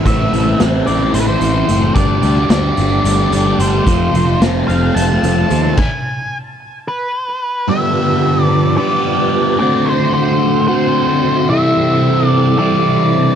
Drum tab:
CC |-------|-------|-------|x------|
HH |xxxxxxx|xxxxxxx|xxxxxxx|-------|
SD |--o----|--o----|--o----|-------|
BD |o------|o------|o------|o------|

CC |-------|-------|-------|
HH |-------|-------|-------|
SD |-------|-------|-------|
BD |-------|-------|-------|